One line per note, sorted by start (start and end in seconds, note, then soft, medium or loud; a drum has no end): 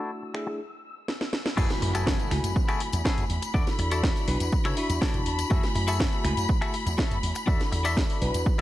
0.00 0.31 A3 medium
0.00 0.32 D4 medium
0.00 0.10 E4 medium
0.00 0.32 E4 medium
0.00 0.10 F#4 medium
0.00 0.32 F#4 medium
0.00 0.10 A4 medium
0.00 1.58 E6 medium
0.22 muted clean electric guitar stroke soft
0.34 0.59 A3 medium
0.34 0.59 D4 medium
0.34 0.59 E4 medium
0.34 0.59 G#4 medium
0.34 finger snap medium
0.34 muted clean electric guitar stroke medium
0.47 muted clean electric guitar stroke loud
1.08 snare medium
1.21 snare medium
1.33 snare medium
1.46 snare medium
1.57 1.66 F#2 loud
1.57 2.28 A3 medium
1.57 2.28 E4 medium
1.57 1.70 E4 loud
1.57 1.70 F#4 loud
1.57 2.28 F#4 medium
1.57 1.70 G#4 medium
1.57 1.70 A4 loud
1.57 2.29 G#5 medium
1.57 8.61 B5 medium
1.57 kick loud
1.57 crash loud
1.57 tambourine medium
1.57 impact medium
1.70 snare soft
1.70 closed hi-hat soft
1.70 tambourine soft
1.82 2.12 F#2 medium
1.82 muted clean electric guitar stroke medium
1.82 open hi-hat loud
1.95 2.31 E4 medium
1.95 2.31 F#4 medium
1.95 2.31 G#4 medium
1.95 2.32 A4 loud
1.95 closed hi-hat medium
1.95 tambourine medium
2.07 kick loud
2.07 snare loud
2.07 tambourine medium
2.20 closed hi-hat soft
2.20 tambourine soft
2.31 2.39 C#2 medium
2.31 3.51 A3 medium
2.31 3.51 E4 medium
2.31 3.52 F#4 medium
2.31 3.52 G#5 medium
2.31 finger snap medium
2.31 open hi-hat loud
2.44 2.52 F#2 loud
2.44 closed hi-hat medium
2.44 tambourine medium
2.56 kick loud
2.56 tambourine medium
2.68 2.80 E4 loud
2.68 2.80 F#4 loud
2.68 2.81 G#4 medium
2.68 2.81 A4 loud
2.68 finger snap medium
2.68 closed hi-hat medium
2.68 tambourine soft
2.80 open hi-hat loud
2.92 3.01 E2 loud
2.92 muted clean electric guitar stroke soft
2.92 closed hi-hat medium
2.92 tambourine medium
3.05 3.24 E4 medium
3.05 3.24 F#4 medium
3.05 3.24 G#4 medium
3.05 3.24 A4 medium
3.05 kick loud
3.05 snare loud
3.05 tambourine medium
3.18 3.25 F#2 medium
3.18 closed hi-hat medium
3.18 tambourine soft
3.30 3.38 E2 medium
3.30 open hi-hat loud
3.42 muted clean electric guitar stroke soft
3.42 closed hi-hat medium
3.42 tambourine medium
3.54 3.62 E2 loud
3.54 4.25 D4 medium
3.54 3.67 E4 loud
3.54 4.25 E4 medium
3.54 3.67 F#4 loud
3.54 4.25 F#4 medium
3.54 3.67 A4 medium
3.54 4.26 A4 medium
3.54 3.67 D5 loud
3.54 kick loud
3.54 tambourine medium
3.67 snare soft
3.67 closed hi-hat soft
3.67 tambourine soft
3.79 4.09 E2 medium
3.79 muted clean electric guitar stroke medium
3.79 open hi-hat loud
3.91 4.28 E4 medium
3.91 4.28 F#4 medium
3.91 4.28 A4 medium
3.91 4.28 D5 medium
3.91 closed hi-hat medium
3.91 tambourine medium
4.03 kick loud
4.03 snare loud
4.03 tambourine medium
4.16 open hi-hat medium
4.16 tambourine soft
4.27 4.36 B1 medium
4.27 4.74 D4 medium
4.27 4.74 E4 medium
4.27 4.74 F#4 medium
4.27 4.75 B4 medium
4.27 open hi-hat loud
4.40 4.48 E2 loud
4.40 closed hi-hat medium
4.40 tambourine medium
4.52 kick loud
4.52 tambourine medium
4.65 4.73 C#3 medium
4.65 4.77 E4 medium
4.65 4.77 F#4 medium
4.65 4.77 A4 loud
4.65 4.77 C#5 loud
4.65 finger snap medium
4.65 closed hi-hat medium
4.65 tambourine soft
4.76 5.48 D4 medium
4.76 5.48 E4 medium
4.76 5.48 F#4 medium
4.76 5.00 E5 medium
4.76 5.48 C#6 medium
4.76 open hi-hat loud
4.90 4.98 E2 loud
4.90 muted clean electric guitar stroke soft
4.90 closed hi-hat medium
4.90 tambourine medium
5.01 5.20 E4 medium
5.01 5.20 F#4 medium
5.01 5.21 A4 medium
5.01 5.21 D5 medium
5.01 5.48 A5 medium
5.01 kick loud
5.01 snare loud
5.14 5.22 E1 medium
5.14 closed hi-hat medium
5.14 tambourine soft
5.26 5.42 E2 medium
5.26 open hi-hat loud
5.39 muted clean electric guitar stroke soft
5.39 closed hi-hat medium
5.39 tambourine medium
5.50 5.59 F#2 loud
5.50 6.22 A3 medium
5.50 6.22 E4 medium
5.50 5.63 F#4 loud
5.50 6.22 F#4 medium
5.50 5.63 G#4 loud
5.50 5.64 A4 medium
5.50 5.64 E5 loud
5.50 6.22 G#5 medium
5.50 kick loud
5.50 tambourine medium
5.63 snare soft
5.63 closed hi-hat soft
5.63 tambourine soft
5.75 6.06 F#2 medium
5.75 muted clean electric guitar stroke medium
5.75 open hi-hat loud
5.88 6.25 F#4 medium
5.88 6.25 G#4 medium
5.88 6.25 A4 medium
5.88 6.25 E5 loud
5.88 closed hi-hat medium
5.88 tambourine medium
6.00 kick loud
6.00 snare loud
6.13 closed hi-hat soft
6.13 tambourine soft
6.24 6.33 C#2 medium
6.24 7.44 A3 medium
6.24 7.45 E4 medium
6.24 7.45 F#4 medium
6.24 7.45 G#5 medium
6.24 finger snap medium
6.24 open hi-hat loud
6.37 6.45 F#2 loud
6.37 closed hi-hat medium
6.37 tambourine medium
6.49 kick loud
6.49 tambourine medium
6.61 6.74 F#4 loud
6.61 6.74 G#4 loud
6.61 6.74 A4 loud
6.61 6.74 E5 loud
6.61 finger snap medium
6.61 closed hi-hat medium
6.61 tambourine soft
6.74 open hi-hat loud
6.86 6.94 E2 medium
6.86 muted clean electric guitar stroke soft
6.86 closed hi-hat medium
6.86 tambourine medium
6.98 7.17 F#4 medium
6.98 7.17 G#4 medium
6.98 7.17 A4 medium
6.98 7.17 E5 medium
6.98 kick loud
6.98 snare loud
6.98 tambourine medium
7.11 7.19 F#2 medium
7.11 closed hi-hat medium
7.11 tambourine soft
7.23 7.31 E2 medium
7.23 open hi-hat loud
7.35 muted clean electric guitar stroke soft
7.35 closed hi-hat medium
7.35 tambourine medium
7.47 7.56 E2 loud
7.47 8.18 D4 medium
7.47 8.19 E4 medium
7.47 7.60 F#4 loud
7.47 8.19 F#4 medium
7.47 7.60 A4 medium
7.47 8.19 A4 loud
7.47 7.60 D5 loud
7.47 7.60 E5 loud
7.47 kick loud
7.47 tambourine medium
7.59 snare soft
7.59 closed hi-hat soft
7.59 tambourine soft
7.72 8.02 E2 medium
7.72 muted clean electric guitar stroke medium
7.72 open hi-hat loud
7.84 8.21 F#4 medium
7.84 8.21 A4 medium
7.84 8.22 D5 medium
7.84 8.22 E5 loud
7.84 closed hi-hat medium
7.84 tambourine medium
7.97 kick loud
7.97 snare loud
7.97 tambourine medium
8.10 open hi-hat medium
8.10 tambourine soft
8.21 8.30 B1 medium
8.21 8.61 D4 medium
8.21 8.61 E4 medium
8.21 8.61 F#4 medium
8.21 8.61 B4 medium
8.21 open hi-hat loud
8.34 8.42 E2 loud
8.34 closed hi-hat medium
8.34 tambourine medium
8.46 kick loud
8.46 tambourine medium
8.58 tambourine soft